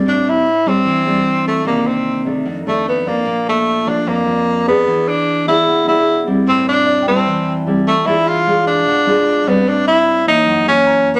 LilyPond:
<<
  \new Staff \with { instrumentName = "Tine electric piano" } { \time 4/4 \key a \minor \tempo 4 = 150 r1 | r1 | r1 | r1 |
r4 d''16 g''16 a''4. r4 | r8 f''4. r2 | r2. ais''4 | }
  \new Staff \with { instrumentName = "Tenor saxophone" } { \time 4/4 \key a \minor d'8 e'4 c'2 a8 | bes8 c'4 r4 a8 b8 bes8~ | bes8 a4 d'8 bes4. b8~ | b8 d'4 e'4 e'4 r8 |
c'8 d'4 c'4. r8 a8 | e'8 f'4 d'2 b8 | d'8 e'4 dis'4 cis'8~ \tuplet 3/2 { cis'4 b8 } | }
  \new Staff \with { instrumentName = "Nylon-string guitar" } { \time 4/4 \key a \minor << { <g c' d'>4 r8 <g c' d'>4 <g c' d'>4. | <ees bes d'>4. <ees a d'>4 <dis a d'>4 <f d'>8~ | <f d'>4. <f a d'>4 <f d'>4 <b d' gis'>8~ | <b d' gis'>4. <b d' gis'>4 <b d' gis'>4 <g c' e'>8~ |
<g c' e'>4. <g c' e'>4. <g c' e'>8 r8 | <gis d' f'>8 r8 <gis d' f'>4. <gis d' f'>4 <g c' d'>8~ | <g c' d'>4. <e bes cis'>4 <e ais cis'>4. | } \\ { a,2 e2 | c2 f,2 | bes,2 f,2 | e2 b,2 |
a,2 e2 | e2 b,2 | a,2 fis,2 | } >> }
>>